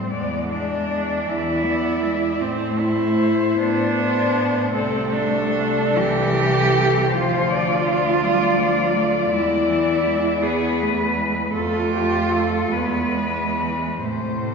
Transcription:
Already playing: G3 C4
0.11 E2 G#3 B3 D5
0.52 D4 D5
1.27 E2 E3 E4
1.64 B3 D5
2.03 G#3
2.41 A2 A3 C4
2.80 E4 C5
3.57 A2 B3 D4
3.98 C5
4.72 C2 A3 C4 A4
5.12 D4 A4
5.97 C2 E3 G4
6.37 A4
7.10 D2 F3 F4 C5
7.49 D5
7.87 D5
8.22 G3
8.60 F3
8.97 A3
9.32 E2 G#3 E4
9.70 E3
10.08 G#3
10.42 B3 G#4 B4
10.81 A3
11.17 G#3
11.54 F2 A3 F4 A4
11.94 G4
12.31 A4
12.71 E2 G#3 B3 B4
13.16 G#3
13.60 E3
14.03 A2 C3 A3 C5

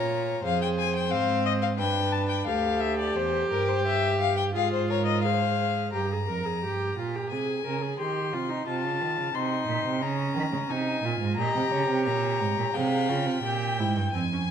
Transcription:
Already playing: A#2 F4 C#5 A#5
0.43 F2 G#4 C5 F5
0.62 G5
0.79 G#5
0.95 G5
1.11 G#2 C4 F5
1.46 D#5
1.62 F5
1.78 G2 D4 B4 G5
2.12 A5
2.28 G5
2.46 D2 G4 A4 F5
2.80 E5
2.99 D5
3.16 E2 G4 C5
3.51 G2 A#4
3.68 C5
3.87 E5
4.21 F5
4.37 G5
4.54 G#2 F4 G#4 F5
4.73 C5
4.90 A#4 C#5
5.06 D#5
5.23 G#4 C5 F5
5.93 G2 G4 A#5
6.12 G#4
6.28 F2 A#4
6.45 G#4
6.62 G2 G4
6.97 A#2 F4
7.15 G4
7.30 C3 G#4 G#5
7.65 C#3 A#4
7.82 G#4
7.99 D#3 G4 C6
8.33 C3 F4
8.49 D#4
8.67 C3 F4 A5
8.84 C#3
9.01 D#3
9.17 C#3
9.34 C3 D#4 C6
9.68 A#2
9.85 C3
10.01 C#3 C#4 A#5
10.36 D#3
10.52 C#3
10.69 C3 D#4 G#5
11.03 A#2 F4
11.20 G#2
11.36 A#2 G4 D#5 A#5
11.55 C3
11.71 C#3 C#5
11.89 C3
12.06 A#2 A#5
12.40 G#2
12.58 A#2
12.74 C3 G#4 F5 G5
13.09 C#3 F4
13.26 C3
13.43 A#2 G4 G5
13.79 G#2 E4
13.96 G2
14.13 F2 C4 G#5
14.33 C#4

